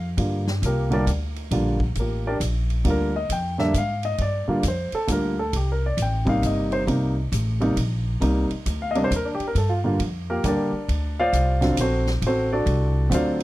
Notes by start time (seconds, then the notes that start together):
Already playing: F2
0.17 G2 D3 G3 A#3 F4, kick, ride
0.47 snare
0.62 C2 F4 A#4, kick, hi-hat pedal, ride
0.66 A#3 G4
0.90 D3 G3 A#3 D4 F4 G4 A#4 D5, ride
1.07 D2, kick, hi-hat pedal, ride
1.36 ride
1.51 A#1 D3 G3 A#3 F4, kick, ride
1.80 kick
1.95 A1, kick, hi-hat pedal, ride
1.99 A#3 F4 G4 A#4
2.27 D4 G4 A#4 D5
2.40 A#1, kick, hi-hat pedal, ride
2.70 ride
2.85 D2 D3 G3 A#3 F4, kick, ride
2.90 A#4
3.16 D#5
3.29 F2 G5, kick, hi-hat pedal, ride
3.58 D3 G3 A#3 D4 E5, snare
3.74 G#2 F5, kick, hi-hat pedal, ride
4.03 D#5, ride
4.18 G2 D5, kick, ride
4.48 D3 G3 A#3 F4, muted upright bass stroke
4.63 F2, kick, hi-hat pedal, ride
4.68 C5
4.92 A4, muted upright bass stroke, ride
5.07 D2 D3 G3 A#3 F4, kick, hi-hat pedal, ride
5.12 A#4
5.39 A4
5.53 C2 G4, kick, ride
5.72 A#4
5.86 D5
5.97 A1, kick, hi-hat pedal, ride
6.02 G5
6.25 C3 G3 A#3 D#4, kick, ride
6.29 F5
6.42 G1, kick, hi-hat pedal, ride
6.46 D#5
6.72 C5, ride
6.86 C2 C3 G3 A#3 D#4, kick, ride
7.32 A1, kick, hi-hat pedal, ride
7.60 C3 G3 A#3 D#4, ride
7.76 A#1, kick, ride
8.20 C2 C3 G3 A#3 D#4, kick, ride
8.50 muted upright bass stroke, ride
8.66 D2, kick, hi-hat pedal, ride
8.82 F5
8.91 D#5
8.95 C3 G3 A#3 D4, ride
9.04 C5
9.11 D#2, kick, hi-hat pedal, ride
9.16 A#4
9.25 D4
9.35 G4
9.39 muted upright bass stroke, ride
9.47 A#4
9.55 G2 A4, kick, ride
9.69 F4
9.84 D3 G3 A#3 F4
9.99 F2, kick, ride
10.30 A#3 F4 G4 A#4
10.44 D#2 D3 G3 A#3 G4 D5, kick, hi-hat pedal, ride
10.48 D4 A#4
10.72 muted upright bass stroke
10.88 D2, kick, ride
11.20 F4 C5 D5 F5
11.33 C2, kick, hi-hat pedal, ride
11.61 D3 F#3 C4 F4, snare, ride
11.77 A#1 F#4 C5, kick, hi-hat pedal, ride
11.81 C4 A4
12.07 snare
12.22 A1, kick, ride
12.26 C4 F#4 A4 C5
12.53 D4 F#4 A4 D5
12.66 C2, kick, ride
13.10 D2 D3 F#3 C4 F4, kick, hi-hat pedal, ride
13.14 C5 D5 F5